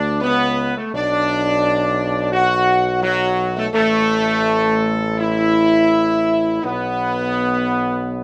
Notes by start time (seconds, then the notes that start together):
Already playing: D2 D4 D5
0.20 C#2 B3 B4
0.76 A3 A4
0.93 B1 D4 D5
2.32 F#4 F#5
3.02 F#3 F#4
3.56 A3 A4
3.72 A1 A3 A4
5.16 E4 E5
6.62 B1 B3 B4